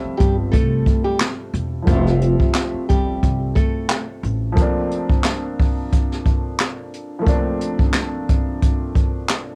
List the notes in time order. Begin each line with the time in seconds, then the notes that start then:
Already playing: F3 G3 A3 C4 E5
0.04 muted upright bass stroke
0.17 G1 G3 G4, kick, closed hi-hat
0.52 C2 A3 A4, kick, closed hi-hat
0.86 kick, closed hi-hat
1.04 G3 G4
1.20 snare, clap, closed hi-hat
1.54 E1, closed hi-hat
1.82 F3 G3
1.87 F1 F3 A3 C4 F4, kick, closed hi-hat
1.92 E5
2.07 snare
2.22 closed hi-hat
2.40 kick
2.54 snare, clap, closed hi-hat
2.74 muted upright bass stroke
2.89 G1 G3 G4, kick, closed hi-hat
3.23 C2, kick, closed hi-hat
3.55 A3 A4, kick, closed hi-hat
3.90 snare, clap, closed hi-hat
4.23 A1, closed hi-hat
4.52 F3 A3
4.57 A#3 C4, kick, closed hi-hat
4.62 D4
4.91 closed hi-hat
5.09 kick
5.24 snare, clap, closed hi-hat
5.59 kick, open hi-hat
5.92 kick, closed hi-hat
6.12 snare
6.26 kick, closed hi-hat
6.59 snare, clap, closed hi-hat
6.94 closed hi-hat
7.19 F3 A3
7.24 A#3 C4, kick, closed hi-hat
7.29 D4
7.61 closed hi-hat
7.79 kick
7.94 snare, clap, closed hi-hat
8.29 kick, closed hi-hat
8.62 kick, closed hi-hat
8.95 kick, closed hi-hat
9.29 snare, clap, closed hi-hat